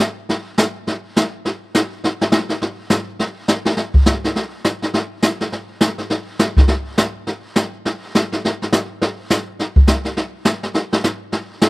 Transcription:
0.29 brush sweep soft
0.29 snare soft
0.58 snare medium
0.58 hi-hat pedal medium
0.87 brush sweep soft
0.87 snare soft
1.16 snare medium
1.16 hi-hat pedal medium
1.45 brush sweep soft
1.45 snare soft
1.74 snare medium
1.74 hi-hat pedal medium
2.04 brush sweep soft
2.04 snare soft
2.21 snare soft
2.32 snare medium
2.32 hi-hat pedal soft
2.49 snare soft
2.61 brush sweep soft
2.61 snare soft
2.90 snare medium
2.90 hi-hat pedal medium
3.19 brush sweep soft
3.19 snare soft
3.48 snare medium
3.48 hi-hat pedal medium
3.65 snare soft
3.77 brush sweep soft
3.77 snare soft
3.94 kick soft
4.06 snare medium
4.06 hi-hat pedal medium
4.24 snare soft
4.35 brush sweep soft
4.35 snare soft
4.64 snare medium
4.64 hi-hat pedal soft
4.82 snare soft
4.94 brush sweep soft
4.94 snare soft
5.22 snare medium
5.22 hi-hat pedal medium
5.40 snare soft
5.52 brush sweep soft
5.52 snare soft
5.80 snare medium
5.80 hi-hat pedal medium
5.98 snare soft
6.10 brush sweep soft
6.10 snare soft
6.39 snare medium
6.39 hi-hat pedal medium
6.57 kick medium
6.57 snare soft
6.68 brush sweep soft
6.68 snare soft
6.97 snare medium
6.97 hi-hat pedal medium
7.27 brush sweep soft
7.27 snare soft
7.56 snare medium
7.56 hi-hat pedal medium
7.85 brush sweep soft
7.85 snare soft
8.15 snare medium
8.15 hi-hat pedal medium
8.32 snare soft
8.45 brush sweep soft
8.45 snare soft
8.62 snare soft
8.72 snare medium
8.72 hi-hat pedal medium
9.02 brush sweep soft
9.02 snare soft
9.30 snare medium
9.30 hi-hat pedal medium
9.59 brush sweep soft
9.59 snare soft
9.76 kick medium
9.87 snare medium
9.87 hi-hat pedal medium
10.05 snare soft
10.17 brush sweep soft
10.17 snare soft
10.45 snare medium
10.45 hi-hat pedal medium
10.63 snare soft
10.74 brush sweep soft
10.74 snare soft
10.93 snare soft
11.04 snare medium
11.04 hi-hat pedal medium
11.32 brush sweep soft
11.32 snare soft
11.61 snare medium
11.61 hi-hat pedal soft

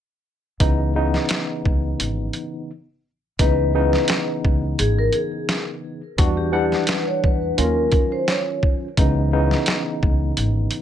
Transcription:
0.60 1.15 C#2 loud
0.60 0.92 C#3 medium
0.60 0.93 E3 medium
0.60 0.93 B3 medium
0.60 0.93 D#4 loud
0.60 kick loud
0.60 closed hi-hat medium
0.95 2.70 C#3 medium
0.95 2.70 E3 medium
0.95 2.70 B3 medium
0.95 2.70 D#4 loud
1.14 snare soft
1.29 snare loud
1.29 closed hi-hat medium
1.65 1.93 C#2 medium
1.65 kick loud
2.00 2.27 G#1 medium
2.00 closed hi-hat medium
2.33 closed hi-hat soft
3.39 3.94 C#2 loud
3.39 3.72 C#3 medium
3.39 3.72 E3 medium
3.39 3.72 B3 medium
3.39 3.72 D#4 loud
3.39 4.24 B4 loud
3.39 kick loud
3.39 closed hi-hat loud
3.74 6.00 C#3 medium
3.74 6.00 E3 medium
3.74 6.01 B3 medium
3.74 6.01 D#4 loud
3.93 snare soft
4.08 snare loud
4.08 closed hi-hat medium
4.45 4.72 C#2 medium
4.45 kick loud
4.79 5.07 G#1 loud
4.79 4.96 G#4 medium
4.79 closed hi-hat medium
4.99 5.13 A#4 medium
5.13 5.64 G#4 medium
5.13 closed hi-hat soft
5.49 snare loud
5.49 closed hi-hat medium
6.18 6.73 E2 loud
6.18 6.51 E3 medium
6.18 6.51 G3 medium
6.18 6.51 D4 medium
6.18 6.51 F#4 loud
6.18 kick loud
6.18 closed hi-hat loud
6.37 6.52 G4 medium
6.52 7.57 E3 loud
6.52 7.58 G3 medium
6.52 7.58 D4 medium
6.52 6.85 G4 medium
6.52 7.58 F#5 loud
6.72 snare soft
6.87 7.05 B4 medium
6.87 snare loud
6.87 closed hi-hat medium
7.07 7.22 C#5 medium
7.24 7.51 E2 medium
7.24 7.55 B4 medium
7.24 kick loud
7.57 7.85 D#2 loud
7.57 8.87 D#3 medium
7.57 8.87 F#3 medium
7.57 8.87 C#4 medium
7.57 8.87 F4 loud
7.57 8.09 A#4 medium
7.57 closed hi-hat loud
7.92 kick medium
7.92 closed hi-hat soft
8.12 8.26 C5 medium
8.28 8.59 C#5 medium
8.28 snare loud
8.28 closed hi-hat medium
8.63 kick medium
8.97 9.52 C#2 loud
8.97 9.30 C#3 medium
8.97 9.30 E3 medium
8.97 9.30 B3 medium
8.97 9.31 D#4 loud
8.97 kick loud
8.97 closed hi-hat loud
9.33 10.82 C#3 medium
9.33 10.82 E3 medium
9.33 10.82 B3 medium
9.33 10.82 D#4 loud
9.51 snare soft
9.66 snare loud
9.66 closed hi-hat medium
10.03 10.30 C#2 medium
10.03 kick loud
10.37 10.65 G#1 medium
10.37 closed hi-hat medium
10.71 closed hi-hat soft

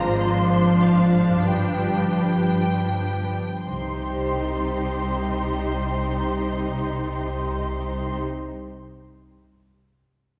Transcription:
0.00 1.46 G#1 soft
0.00 1.42 G#2 soft
0.00 1.45 G#2 medium
0.00 3.35 F3 soft
0.00 1.44 C4 soft
0.00 1.31 D4 soft
0.00 3.35 D4 soft
0.00 1.35 F4 soft
0.00 1.45 F4 soft
0.00 1.46 C5 soft
0.00 1.49 C5 soft
0.00 0.17 A#5 medium
0.18 0.80 C6 medium
0.81 1.47 F5 soft
1.28 3.64 G2 soft
1.32 3.66 D4 soft
1.36 3.68 F4 soft
1.41 3.32 G1 soft
1.41 3.32 G2 soft
1.41 3.71 B4 soft
1.45 3.32 G4 soft
1.45 3.32 B4 soft
1.45 3.67 G5 medium
3.67 8.18 C2 soft
3.67 8.18 C3 soft
3.67 8.19 C3 soft
3.67 8.19 G3 soft
3.67 8.19 D#4 soft
3.67 8.19 G4 soft
3.67 8.19 C5 soft
3.67 8.19 C6 soft
3.74 8.25 C4 soft
3.81 8.32 D#4 soft
3.88 8.39 G4 soft
3.95 8.46 C5 soft
4.02 8.53 G5 soft

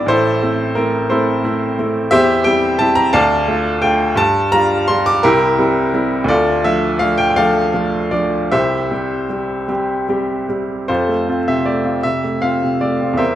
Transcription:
0.00 0.12 G#1 medium
0.00 0.12 B3 soft
0.00 0.12 D4 medium
0.00 0.09 E4 medium
0.00 0.12 G#4 medium
0.00 0.12 B4 medium
0.00 0.12 D5 medium
0.00 0.11 E5 medium
0.06 0.41 A1 medium
0.06 0.41 E4 medium
0.06 0.73 A4 medium
0.06 0.77 C5 loud
0.42 0.74 A3 soft
0.42 0.74 C4 medium
0.42 0.74 E4 medium
0.75 1.07 A3 soft
0.75 1.07 C4 soft
0.75 1.08 E4 soft
0.75 1.10 A#4 medium
1.10 1.42 A3 medium
1.10 1.42 C4 medium
1.10 1.42 E4 medium
1.10 1.43 A4 medium
1.10 1.44 C5 medium
1.44 1.75 A3 medium
1.44 1.75 C4 medium
1.44 1.75 E4 medium
1.79 2.09 A3 medium
1.79 2.09 C4 medium
1.79 2.10 E4 medium
2.11 2.45 E2 medium
2.11 2.44 G4 medium
2.11 2.44 C5 medium
2.11 2.45 E5 loud
2.44 2.77 G3 medium
2.44 2.77 C4 medium
2.44 2.77 E4 medium
2.44 2.79 G5 loud
2.79 3.11 G3 soft
2.79 3.11 C4 soft
2.79 3.11 E4 medium
2.79 2.97 A5 loud
2.95 3.14 A#5 loud
3.13 3.47 D2 medium
3.13 3.79 D5 medium
3.13 3.79 F5 medium
3.13 3.83 A5 loud
3.48 3.80 A3 medium
3.48 3.80 D4 medium
3.48 3.80 F4 medium
3.82 4.15 A3 medium
3.82 4.15 D4 medium
3.82 4.15 F4 medium
3.82 4.18 G5 loud
4.15 4.51 G2 medium
4.15 4.53 A5 loud
4.52 4.85 G3 medium
4.52 4.85 D4 medium
4.52 4.86 F4 medium
4.52 4.88 A#5 loud
4.88 5.21 G3 soft
4.88 5.21 D4 soft
4.88 5.21 F4 soft
4.88 5.06 C6 loud
5.06 5.24 D6 loud
5.23 5.58 C2 medium
5.23 5.58 E4 medium
5.23 6.25 G4 medium
5.23 6.28 A#4 loud
5.59 5.90 G3 medium
5.59 5.90 C4 medium
5.59 5.91 E4 medium
5.94 6.25 G3 medium
5.94 6.26 C4 soft
5.94 6.26 E4 medium
6.24 6.61 D2 medium
6.28 6.62 F4 medium
6.28 6.62 A4 medium
6.28 6.64 D5 loud
6.64 6.97 F3 soft
6.64 6.97 A3 soft
6.64 6.98 D4 medium
6.64 7.00 E5 medium
6.99 7.34 F3 soft
6.99 7.34 A3 soft
6.99 7.34 D4 soft
6.99 7.18 F5 medium
7.18 7.29 G5 loud
7.30 7.37 G5 medium
7.36 7.71 F3 medium
7.36 7.71 A3 medium
7.36 7.71 D4 medium
7.36 8.09 A4 medium
7.36 8.08 D5 medium
7.36 8.12 F5 loud
7.74 8.08 F3 soft
7.74 8.08 A3 medium
7.74 8.08 D4 medium
8.11 8.48 F3 soft
8.11 8.48 A3 soft
8.11 8.48 D4 medium
8.11 8.51 D5 medium
8.51 8.90 C2 medium
8.51 8.90 G4 medium
8.51 9.65 C5 medium
8.51 9.69 E5 medium
8.91 9.26 G3 soft
8.91 9.26 C4 soft
8.91 9.26 G4 soft
9.30 9.65 G3 soft
9.30 9.65 C4 soft
9.30 9.65 G4 soft
9.68 10.04 G3 medium
9.68 10.05 C4 soft
9.68 10.05 G4 medium
10.09 10.45 G3 soft
10.09 10.46 C4 soft
10.09 10.46 G4 medium
10.49 10.85 G3 soft
10.49 10.85 C4 soft
10.49 10.85 G4 soft
10.88 13.16 F2 medium
10.88 11.28 F4 medium
10.88 11.44 A4 medium
10.88 11.47 C5 medium
11.08 11.40 A3 soft
11.29 11.46 C4 soft
11.29 11.46 F4 soft
11.48 11.79 C3 soft
11.48 11.67 E5 medium
11.66 11.97 A3 soft
11.66 12.04 D5 medium
11.85 12.03 C4 soft
11.85 12.03 F4 soft
12.03 12.36 C3 soft
12.03 12.43 E5 medium
12.24 12.55 A3 soft
12.42 12.61 C4 soft
12.42 12.61 F4 soft
12.42 12.81 F5 medium
12.63 12.94 C3 soft
12.81 13.12 A3 soft
12.81 13.19 D5 medium
13.01 13.18 C4 soft
13.01 13.18 F4 soft
13.13 13.35 E2 medium
13.17 13.35 A#4 medium
13.17 13.35 C5 medium
13.17 13.35 E5 medium

